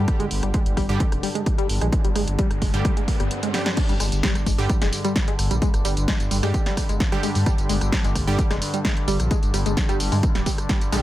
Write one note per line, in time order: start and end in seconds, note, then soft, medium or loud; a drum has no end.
0.00 3.76 G2 medium
0.00 0.86 D3 medium
0.00 3.76 D3 medium
0.00 0.86 G3 medium
0.00 0.86 G4 medium
0.08 kick loud
0.08 cross-stick medium
0.08 closed hi-hat medium
0.08 riser medium
0.20 0.29 G1 loud
0.20 0.26 G#3 medium
0.20 closed hi-hat medium
0.31 0.41 G1 loud
0.31 open hi-hat loud
0.43 0.52 G1 medium
0.43 0.49 G3 medium
0.43 cross-stick medium
0.43 closed hi-hat medium
0.54 0.60 G#3 medium
0.54 kick loud
0.54 closed hi-hat medium
0.66 0.75 G1 medium
0.66 closed hi-hat medium
0.77 0.87 G1 medium
0.77 0.86 G3 loud
0.77 kick medium
0.77 cross-stick medium
0.77 open hi-hat loud
0.89 0.98 G2 medium
0.89 1.01 D3 medium
0.89 1.01 G3 medium
0.89 1.01 G4 medium
0.89 closed hi-hat medium
1.00 1.06 G#3 medium
1.00 kick loud
1.00 closed hi-hat medium
1.12 1.21 F1 medium
1.12 cross-stick medium
1.12 closed hi-hat medium
1.23 1.29 G3 medium
1.23 open hi-hat loud
1.35 1.41 G#3 medium
1.35 closed hi-hat medium
1.46 kick loud
1.46 cross-stick medium
1.46 closed hi-hat medium
1.58 1.67 G3 loud
1.58 closed hi-hat medium
1.69 1.79 G1 loud
1.69 open hi-hat loud
1.81 1.91 A#1 medium
1.81 1.87 G#3 medium
1.81 cross-stick medium
1.81 closed hi-hat medium
1.92 kick loud
1.92 closed hi-hat medium
2.04 2.14 G1 loud
2.04 2.10 G3 medium
2.04 closed hi-hat medium
2.16 2.26 G1 loud
2.16 2.22 G#3 medium
2.16 cross-stick medium
2.16 open hi-hat loud
2.27 2.37 G1 medium
2.27 closed hi-hat medium
2.39 2.48 G3 loud
2.39 kick loud
2.39 closed hi-hat medium
2.51 2.60 G1 medium
2.51 cross-stick medium
2.51 closed hi-hat medium
2.62 2.72 G1 medium
2.62 2.68 G#3 medium
2.62 kick medium
2.62 open hi-hat loud
2.74 2.83 G2 medium
2.74 2.93 D3 medium
2.74 2.93 G3 medium
2.74 2.93 G4 loud
2.74 closed hi-hat medium
2.85 2.91 G3 medium
2.85 kick loud
2.85 cross-stick medium
2.85 closed hi-hat medium
2.97 3.03 G#3 medium
2.97 closed hi-hat medium
3.08 kick medium
3.08 open hi-hat loud
3.20 3.29 G1 loud
3.20 3.29 G3 loud
3.20 cross-stick medium
3.20 closed hi-hat medium
3.31 closed hi-hat medium
3.43 3.49 G#3 medium
3.43 closed hi-hat medium
3.54 3.67 D3 medium
3.54 3.67 G3 medium
3.54 3.67 G4 medium
3.54 snare medium
3.54 open hi-hat loud
3.66 3.72 G3 medium
3.66 snare loud
3.66 closed hi-hat medium
3.77 11.02 G2 medium
3.77 11.02 D3 medium
3.77 kick loud
3.77 closed hi-hat medium
3.77 crash loud
3.77 tambourine soft
3.89 3.98 G1 loud
3.89 3.95 G3 medium
3.89 closed hi-hat medium
3.89 tambourine soft
4.00 4.10 G1 loud
4.00 4.06 G#3 medium
4.00 cross-stick medium
4.00 open hi-hat loud
4.00 tambourine medium
4.12 4.21 G1 medium
4.12 closed hi-hat medium
4.12 tambourine soft
4.23 4.33 G3 loud
4.23 kick loud
4.23 snare loud
4.23 closed hi-hat medium
4.23 tambourine soft
4.35 4.45 G1 medium
4.35 cross-stick medium
4.35 closed hi-hat medium
4.35 tambourine soft
4.46 4.56 G1 medium
4.46 4.53 G#3 medium
4.46 kick medium
4.46 open hi-hat loud
4.46 tambourine medium
4.58 4.68 G2 medium
4.58 4.70 D3 medium
4.58 4.70 G3 medium
4.58 4.70 G4 medium
4.58 open hi-hat medium
4.58 tambourine soft
4.69 4.76 G3 medium
4.69 kick loud
4.69 cross-stick medium
4.69 closed hi-hat medium
4.69 tambourine soft
4.81 4.91 F1 medium
4.81 4.87 G#3 medium
4.81 snare medium
4.81 closed hi-hat medium
4.81 tambourine soft
4.93 open hi-hat loud
4.93 tambourine medium
5.05 5.13 G3 loud
5.05 cross-stick medium
5.05 closed hi-hat medium
5.05 tambourine soft
5.16 kick loud
5.16 snare loud
5.16 closed hi-hat medium
5.16 tambourine soft
5.28 5.33 G#3 medium
5.28 closed hi-hat medium
5.39 5.49 G1 loud
5.39 cross-stick medium
5.39 open hi-hat loud
5.39 tambourine medium
5.51 5.60 A#1 medium
5.51 5.56 G3 medium
5.51 closed hi-hat medium
5.51 tambourine soft
5.62 5.68 G#3 medium
5.62 kick loud
5.62 closed hi-hat medium
5.62 tambourine soft
5.74 5.83 G1 loud
5.74 cross-stick medium
5.74 closed hi-hat medium
5.74 tambourine soft
5.85 5.95 G1 loud
5.85 5.94 G3 loud
5.85 open hi-hat loud
5.85 tambourine medium
5.97 6.06 G1 medium
5.97 closed hi-hat medium
5.97 tambourine soft
6.08 6.14 G#3 medium
6.08 kick loud
6.08 cross-stick medium
6.08 snare loud
6.08 closed hi-hat medium
6.08 tambourine soft
6.20 6.29 G1 medium
6.20 closed hi-hat medium
6.20 tambourine soft
6.31 6.41 G1 medium
6.31 6.37 G3 medium
6.31 open hi-hat loud
6.31 tambourine medium
6.43 6.52 G2 medium
6.43 6.62 D3 medium
6.43 6.62 G3 medium
6.43 6.49 G#3 medium
6.43 6.62 G4 loud
6.43 cross-stick medium
6.43 open hi-hat medium
6.43 tambourine soft
6.54 kick loud
6.54 closed hi-hat medium
6.54 tambourine soft
6.66 6.75 G3 loud
6.66 snare medium
6.66 closed hi-hat medium
6.66 tambourine soft
6.77 kick medium
6.77 cross-stick medium
6.77 open hi-hat loud
6.77 tambourine medium
6.89 6.98 G1 loud
6.89 6.95 G#3 medium
6.89 closed hi-hat medium
6.89 tambourine soft
7.00 kick loud
7.00 snare loud
7.00 closed hi-hat medium
7.00 tambourine soft
7.12 8.25 D3 medium
7.12 7.18 G3 medium
7.12 8.25 G3 medium
7.12 8.25 G4 medium
7.12 cross-stick medium
7.12 closed hi-hat medium
7.23 7.30 G#3 medium
7.23 open hi-hat loud
7.23 tambourine medium
7.35 7.45 G2 medium
7.35 open hi-hat medium
7.35 tambourine soft
7.46 7.56 G3 loud
7.46 kick loud
7.46 cross-stick medium
7.46 closed hi-hat medium
7.46 tambourine soft
7.58 7.68 G1 loud
7.58 closed hi-hat medium
7.58 tambourine soft
7.69 7.79 G1 loud
7.69 7.76 G#3 medium
7.69 open hi-hat loud
7.69 tambourine medium
7.81 7.91 G1 medium
7.81 cross-stick medium
7.81 closed hi-hat medium
7.81 tambourine soft
7.92 7.99 G3 medium
7.92 kick loud
7.92 snare loud
7.92 closed hi-hat medium
7.92 tambourine soft
8.04 8.14 G1 medium
8.04 8.10 G#3 medium
8.04 closed hi-hat medium
8.04 tambourine soft
8.15 8.26 G1 medium
8.15 kick medium
8.15 cross-stick medium
8.15 open hi-hat loud
8.15 tambourine medium
8.27 8.37 G2 medium
8.27 8.39 D3 medium
8.27 8.36 G3 loud
8.27 8.39 G3 medium
8.27 8.39 G4 medium
8.27 open hi-hat medium
8.27 tambourine soft
8.39 kick loud
8.39 closed hi-hat medium
8.39 tambourine soft
8.50 8.60 F1 medium
8.50 8.56 G#3 medium
8.50 cross-stick medium
8.50 snare medium
8.50 closed hi-hat medium
8.50 tambourine soft
8.62 open hi-hat loud
8.62 tambourine medium
8.74 8.79 G3 medium
8.74 closed hi-hat medium
8.74 tambourine soft
8.85 8.91 G#3 medium
8.85 kick loud
8.85 cross-stick medium
8.85 snare loud
8.85 closed hi-hat medium
8.85 tambourine soft
8.97 closed hi-hat medium
9.08 9.18 G1 loud
9.08 9.17 G3 loud
9.08 open hi-hat loud
9.08 tambourine medium
9.20 9.29 A#1 medium
9.20 cross-stick medium
9.20 closed hi-hat medium
9.20 tambourine soft
9.31 9.37 G#3 medium
9.31 kick loud
9.31 closed hi-hat medium
9.31 tambourine soft
9.43 9.52 G1 loud
9.43 closed hi-hat medium
9.43 tambourine soft
9.54 9.64 G1 loud
9.54 9.60 G3 medium
9.54 cross-stick medium
9.54 open hi-hat loud
9.54 tambourine medium
9.66 9.75 G1 medium
9.66 9.72 G#3 medium
9.66 closed hi-hat medium
9.66 tambourine soft
9.77 kick loud
9.77 snare loud
9.77 closed hi-hat medium
9.77 tambourine soft
9.89 9.98 G1 medium
9.89 9.98 G3 loud
9.89 cross-stick medium
9.89 closed hi-hat medium
9.89 tambourine soft
10.00 10.10 G1 medium
10.00 open hi-hat loud
10.00 tambourine medium
10.12 10.21 G2 medium
10.12 10.18 G#3 medium
10.12 open hi-hat medium
10.12 tambourine soft
10.23 kick loud
10.23 cross-stick medium
10.23 closed hi-hat medium
10.23 tambourine soft
10.35 10.44 D1 loud
10.35 10.41 G3 medium
10.35 snare medium
10.35 closed hi-hat medium
10.35 tambourine soft
10.46 10.50 G3 medium
10.46 kick medium
10.46 open hi-hat loud
10.46 tambourine medium
10.58 cross-stick medium
10.58 closed hi-hat medium
10.58 tambourine soft
10.69 10.79 G3 medium
10.69 kick loud
10.69 snare loud
10.69 closed hi-hat medium
10.69 tambourine soft
10.81 closed hi-hat medium
10.81 tambourine soft
10.92 11.02 A#1 medium
10.92 11.02 D3 medium
10.92 11.02 G3 medium
10.92 10.99 G#3 medium
10.92 11.02 G4 medium
10.92 cross-stick medium
10.92 open hi-hat loud
10.92 tambourine medium